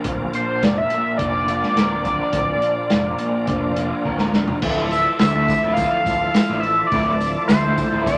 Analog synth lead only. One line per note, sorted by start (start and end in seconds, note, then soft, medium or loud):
0.35 0.65 C5 medium
0.64 0.79 D5 medium
0.78 1.17 E5 loud
1.18 4.01 D5 loud
4.92 5.04 E5 medium
5.20 5.73 E5 loud
5.74 6.62 F5 loud
6.60 6.86 E5 loud
6.87 7.43 D5 loud
7.48 8.02 C5 medium
8.04 8.18 D5 medium